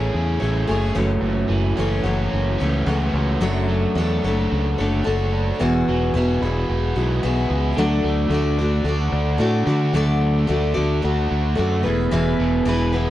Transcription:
Already playing: A2 E3 C#4 E4 G#4 C#5
0.14 E2 C#4
0.40 A1 A3 E4 G#4 C#5
0.67 F#1 A3 E4 G#4 C#5
0.94 F#1 F#2 E3 F#3 A3 C#4 C#5
1.21 F#1 F#2
1.48 F#1 E3
1.77 F#1 E3 A3 C#4 C#5
2.03 F#1 E3 A3 C#4 F#4 C#5
2.31 F#1 C#4
2.58 C#2 A3 C#4 C#5
2.63 E3 A3
2.86 C#2 E3 A3 C#4 F#4 C#5
3.14 C#2 C#4
3.40 F#1 F#2 F#3 A3 D4 A4 C#5
3.68 F#3
3.95 E2 A3 D4 A4
4.00 C#5
4.24 F#1 A3 D4 F#4 A4 C#5
4.51 C#2 D4
4.78 F#1 A3 D4 A4 C#5
5.04 F#1 A3 D4 F#4 A4 C#5
5.33 D4
5.59 E1 E2 E3 B3 E4 F#4 G#4
5.88 E1 F#3
6.14 E1 B3 E4 F#4 G#4
6.41 E1 E4 F#4 G#4
6.45 E4
6.69 E1 B3
6.96 B1 G#3 E4 F#4 G#4
7.23 B1 B3 E4 F#4 G#4
7.49 C#2 B3
7.76 D2 D3 F#3 A3 D4 F#4 D5
8.04 D2 A3
8.29 D2 D3 A3 D4 F#4
8.34 D5
8.58 A3 D4 F#4 D5
8.84 D2 A3 D4 F#4
8.89 D5
9.12 D2 D4
9.38 A2 A3 D4 F#4 D5
9.66 D3 A3 D4 F#4 D5
9.93 D2 D3 F#3 A3 D4 F#4 D5
10.21 A3
10.47 D2 D3 A3 D4 F#4 D5
10.74 D2 A3 D4 F#4 D5
11.02 D2 A3 D4 F#4 D5
11.30 D2 D4
11.55 F#2 A3 D4 F#4 D5
11.83 E1 E2 E4 G#4 B4
12.11 E1 E2 E3 E4 G#4 B4
12.39 E1 B2
12.65 E1 E3 E4 G#4 B4
12.93 B3 E4 G#4 B4

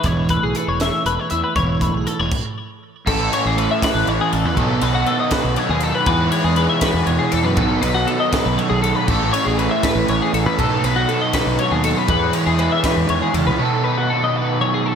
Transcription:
Already playing: B4
0.04 E1 E3 C#5, kick, closed hi-hat
0.29 A3 B4, kick, closed hi-hat
0.42 B1 G#4
0.55 A4 B4, closed hi-hat
0.68 E1 C#5
0.80 C#5 E5, snare, closed hi-hat
1.05 E1 A4 B4, closed hi-hat
1.19 B4 C#5
1.30 E2 E4 E5, closed hi-hat
1.44 B4
1.55 E1 E3 C#5, kick, closed hi-hat
1.81 A3 B4, kick, closed hi-hat
1.94 B1 G#4
2.07 A4, closed hi-hat
2.20 E1 B4 C#5
2.31 kick, crash
3.06 A1 A2 E3 A3 C#4 E4 A4, kick, crash
3.19 B4
3.33 C#4 C#5, ride
3.45 A1 G#4
3.56 A3 A4 B4, ride
3.69 B4 E5
3.82 B4, kick, snare, ride
3.95 A1
4.07 A1 E3 B4 C#5, ride
4.21 G#4
4.33 A1 A4, ride
4.45 E2 B4
4.56 B1 B2 D#3 F#3 B3 D#4 A4, kick, ride
4.81 B1 D#4 B4, ride
4.95 F#4
5.06 B3 A4, ride
5.20 D#5
5.31 F#4 B4, kick, snare, ride
5.44 B1
5.56 F#3 A4 C#5, ride
5.69 D#2 G#4
5.81 A4, ride
5.95 B4
6.06 E2 E3 G#3 B3 D#4 E4 F#4 G#4 B4, kick, ride
6.11 B4
6.32 C#5, ride
6.44 E2 G#4
6.56 G#3 B4, ride
6.69 E5
6.81 F#4 B4, kick, snare, ride
6.94 E2
7.06 E2 B2 C#5, ride
7.19 G#4
7.32 E2 A4, ride
7.45 F#2 B4
7.56 B1 B2 D#3 F#3 B3 D#4 F#4 A4, kick, ride
7.60 A4
7.82 B1 D#4 B4, ride
7.95 F#4
8.07 B3 A4, ride
8.20 D#5
8.32 E4 B4, kick, snare, ride
8.46 B1 F#4
8.58 F#3 A4 C#5, ride
8.70 B1 G#4
8.82 A4, ride
8.95 B4
9.07 A1 A2 E3 A3 C#4 E4 A4, kick, crash
9.23 B4
9.33 C#4 C#5, ride
9.45 A1 G#4
9.58 A3 B4, ride
9.71 E5
9.83 B4, kick, snare, ride
9.95 A1
10.08 A1 E3 B4 C#5, ride
10.22 G#4
10.33 A1 A4, ride
10.46 E2 B4
10.58 B1 B2 D#3 F#3 B3 D#4 A4, kick, ride
10.84 B1 D#4 B4, ride
10.96 F#4
11.09 B3 A4, ride
11.21 D#5
11.33 F#4 B4, kick, snare, ride
11.46 B1
11.59 F#3 A4 C#5, ride
11.71 D#2 G#4
11.84 A4, ride
11.97 B4
12.08 E2 E3 G#3 B3 E4 G#4 B4, kick, ride
12.33 C#5, ride
12.46 E2 G#4
12.59 G#3 B4, ride
12.72 E5
12.84 E3 B4, kick, snare, ride
12.96 E2
13.09 E2 D#3 C#5, ride
13.22 G#4
13.34 E2 C#3 A4, ride
13.47 C#2 B4
13.58 B2 D#3 F#3 B3 D#4 A4
13.84 D#4 B4
13.98 F#4
14.10 B3 A4
14.24 D#5
14.35 F#4 B4
14.61 F#3 A4 C#5
14.74 G#4
14.86 A4

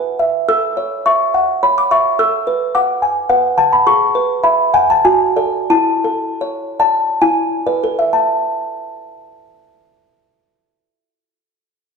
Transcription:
Already playing: E4 B4
0.19 E5
0.48 A4 E6
0.77 C#5
1.06 E5 C#6
1.34 F#5
1.63 C#5 B5
1.78 D6
1.91 E5 C#6
2.19 A4 E6
2.47 B4
2.75 F#5 D6
3.02 G#5
3.29 B4 F#5
3.58 F#5 A5
3.73 B5
3.87 G#4 C#6
4.15 B4
4.44 E5 B5
4.74 F#5 G#5
4.90 A5
5.05 F#4 G#5
5.36 A4 D5
5.70 E4 A5
6.04 A4
6.41 C#5
6.80 D5 A5
7.22 E4 G#5
7.67 B4 D5
7.84 A4
7.99 E5
8.13 A5

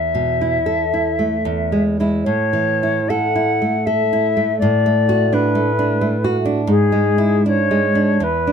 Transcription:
Already playing: E2 E5
0.15 B2
0.41 E4
0.66 A4
0.94 E4
1.19 A3
1.45 E2
1.72 G#3
2.00 G#3 E4
2.24 A2 C#5
2.53 E3
2.83 E4
3.09 A4 F#5
3.35 E4
3.62 A3
3.86 A4 E5
4.13 E4
4.37 A3
4.59 A2 D5
4.86 A3
5.09 F#4
5.33 D4 B4
5.55 A3
5.79 D4
6.01 A3
6.24 F#4
6.45 D4
6.67 G#2 G#4
6.92 G#3
7.18 E4
7.46 D4 C#5
7.71 G#3
7.95 D4
8.20 E2 B4
8.47 D4

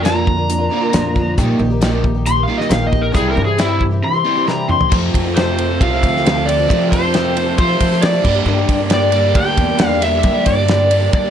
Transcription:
Already playing: F2
0.03 A#2 D3 F3 A#3 D4 F4 A#5, snare, closed hi-hat
0.14 A#3 D4 F4
0.27 A#2 D3, kick
0.37 A#3 D4 F4
0.49 A#2 D3, closed hi-hat
0.58 A#3 D4 F4
0.69 A#2 D3 F3 A#3 D4 F4
0.81 A#3 D4 F4
0.93 F2 A#2 D3 F3 A#3 D4 F4, snare, closed hi-hat
1.15 A#2 D3 F3 A#3 D4 F4, kick
1.37 A#1 A#2 D#3 G3 A#3 D#4 G4, kick, closed hi-hat
1.59 A#1 A#2 D#3 A#3 D#4 G4
1.70 A#3 D#4 G4
1.81 A#2 D#3 G3 A#3 D#4 G4, snare, closed hi-hat
1.92 A#3 D#4 G4
2.04 A#2 D#3, kick
2.14 A#3 D#4 G4
2.25 A#2 D#3 C6, closed hi-hat
2.36 A#3 D#4 G4
2.43 F5
2.47 A#2 D#3 G3 A#3 D#4 G4
2.58 A#3 D#4 G4 D#5, snare
2.69 A#1 A#2 D#3 A#3 D#4 G4 F5, snare, closed hi-hat
2.87 D#5
2.91 A#2 D#3 A#3 D#4 G4, kick
3.01 A#4
3.12 C2 C3 E3 G3 C4 E4 G4 G#4, kick, closed hi-hat
3.31 G3 A#4
3.35 G2 C3 E3 C4 E4 G4
3.45 C4 E4 G4 G#4
3.57 C3 E3 G3 C4 E4 G4, snare, closed hi-hat
3.69 C4 E4 G4
3.81 C3 E3, kick
3.91 C4 E4 G4
4.03 C3 E3 C6
4.13 C4 E4 G4
4.25 C3 E3 G3 C4 E4 G4
4.36 C4 E4 G4
4.47 C3 E3 G3 C4 E4 G4 A#5, snare
4.69 C3 E3 G3 C4 E4 G4 C6, mid tom
4.80 C4 E4 G4, floor tom
4.90 F2 C3 F3 A3 C4 F4 A4, kick, crash
5.14 F2, kick, ride
5.24 F3 A3 C4 A4
5.36 F2 C3 F3 A3 C4 A4 C5, snare, ride
5.58 F3 A3 C4 A4, ride
5.69 F3 A3 C4 A4
5.79 C2 F2 C3 F3 A3 C4 F4 F5, kick, ride
5.91 F3 A3 C4 A4
6.03 D2, kick, ride
6.16 snare
6.24 F2 C3 F3 A3 C4 A4, snare, ride
6.35 F3 A3 C4 A4
6.46 F3 A3 C4 A4 D5, ride
6.58 F3 A3 C4 A4
6.67 F2 C3 F3 A3 C4 A4, kick, ride
6.71 F4
6.92 F2 C5, kick, ride
7.02 F3 A3 C4 A4
7.13 F2 C3 F3 A3 C4 A4, snare, ride
7.35 F3 A3 C4 A4, ride
7.46 F3 A3 C4 A4
7.57 F2 C3 F3 A3 C4 F4 C5, kick, ride
7.68 F3 A3 C4 A4
7.80 F3, kick, ride
7.92 snare
8.02 F2 C3 F3 A3 C4 A4 D5, snare, ride
8.13 F3 A3 C4 A4
8.23 G2 D3 G3 A#3 D4 G4, kick, crash
8.35 G3 A#3 D4 G4
8.46 G2 D3 G3 A#3 D4 G4
8.69 G2, kick, ride
8.79 G3 A#3 D4 G4
8.90 G2 D3 G3 A#3 D4 G4 D5, snare, ride
9.12 G2 D3 G3 A#3 D4 G4, ride
9.35 D2 G5, kick, ride
9.45 G3 A#3 D4 G4
9.57 E2, kick, ride
9.77 G2 D3 G3 A#3 D4 G4, snare, ride
9.87 F5
10.01 G2 D3 G3 A#3 D4 G4 E5, snare, ride
10.12 G3 A#3 D4 G4
10.23 G2 D3 G3 A#3 D4 G4, kick, ride
10.46 G2 D5, kick, ride
10.58 G3 A#3 D4 G4
10.68 G2 D3 G3 A#3 D4 G4, snare, ride
10.91 G2 D3 G3 A#3 D4 G4, ride
11.03 G3 A#3 D4 G4
11.13 G3 D5, kick, ride
11.24 A#3 D4 G4

